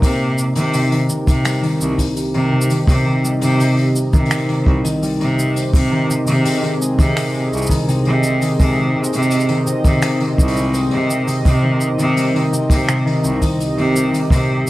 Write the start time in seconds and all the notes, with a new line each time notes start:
Already playing: C3 A#3 D#4 A#4
0.02 C3, kick, open hi-hat, cabasa
0.38 cabasa
0.55 C3 D#3, open hi-hat, cabasa
0.73 C3, open hi-hat, cabasa
0.82 G4
0.91 D#3 C4, open hi-hat
1.09 C3, cabasa
1.27 C3 D#3, kick, open hi-hat, cabasa
1.45 G3, finger snap, open hi-hat, cabasa
1.63 D#3, open hi-hat
1.80 C2 C3, cabasa
1.98 kick, open hi-hat, cabasa
2.17 open hi-hat, cabasa
2.34 C3 D#3, open hi-hat
2.52 C3
2.59 D#5, cabasa
2.70 D#3, open hi-hat, cabasa
2.87 C3, kick, open hi-hat, cabasa
3.06 D#3
3.24 G3, cabasa
3.41 C3 D#3, open hi-hat, cabasa
3.59 C3, open hi-hat, cabasa
3.77 open hi-hat
3.96 cabasa
4.13 C3 D#3, kick, open hi-hat, cabasa
4.25 open hi-hat
4.30 C3, finger snap, open hi-hat, cabasa
4.38 open hi-hat
4.48 D#3, open hi-hat
4.66 C2 C3, kick
4.84 D#3, open hi-hat, cabasa
5.02 G3, open hi-hat, cabasa
5.20 C3 D#3, open hi-hat
5.38 C3, cabasa
5.56 open hi-hat, cabasa
5.74 C3, kick, open hi-hat, cabasa
5.91 D#3
6.08 C3 G#4, cabasa
6.27 C3 D#3, open hi-hat, cabasa
6.45 C3, open hi-hat, cabasa
6.63 D#3, open hi-hat
6.81 G#3, cabasa
6.99 C3 D#3, kick, open hi-hat, cabasa
7.16 C3, finger snap, open hi-hat, cabasa
7.34 open hi-hat
7.53 C2, cabasa
7.57 cabasa
7.62 cabasa
7.66 D#3, kick, cabasa
7.71 open hi-hat, cabasa
7.88 C3, open hi-hat, cabasa
8.05 C3 D#3, open hi-hat
8.23 C3, cabasa
8.41 D#3, open hi-hat, cabasa
8.59 C3 G#3, kick, open hi-hat, cabasa
8.77 D#3
8.95 C3
9.04 cabasa
9.13 C3, open hi-hat, cabasa
9.22 cabasa
9.31 open hi-hat, cabasa
9.40 cabasa
9.49 D#3, open hi-hat
9.66 C3, cabasa
9.84 C3 D#3, kick, open hi-hat, cabasa
10.02 C3, finger snap, open hi-hat, cabasa
10.20 D#3, open hi-hat
10.38 C2 C3, kick, cabasa
10.48 open hi-hat
10.56 G#3, cabasa
10.74 C5, open hi-hat, cabasa
10.91 C3 D#3, open hi-hat
11.09 C3, cabasa
11.27 C3, open hi-hat, cabasa
11.45 C3, kick, open hi-hat, cabasa
11.63 D#3
11.81 cabasa
11.98 C3 D#3, open hi-hat, cabasa
12.16 G3, open hi-hat, cabasa
12.34 D#3, open hi-hat
12.52 C3, cabasa
12.70 C3, kick, open hi-hat, cabasa
12.88 C3, finger snap, cabasa
13.05 D#3, open hi-hat
13.23 C2 C3, cabasa
13.29 G4
13.41 D#3, kick, open hi-hat, cabasa
13.60 open hi-hat, cabasa
13.77 C3 D#3, open hi-hat
13.95 G3, cabasa
14.12 D#3, open hi-hat, cabasa
14.30 C3, kick, open hi-hat, cabasa
14.66 C3